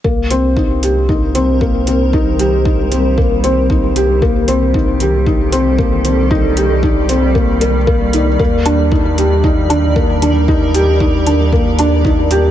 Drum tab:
HH |-x-x-x-x|-x-x-x-x|-x-x-x-x|-x-x-x-x|
BD |o-o-o-o-|o-o-o-o-|o-o-o-o-|o-o-o-o-|

HH |-x-x-x-x|-x-x-x-x|
BD |o-o-o-o-|o-o-o-o-|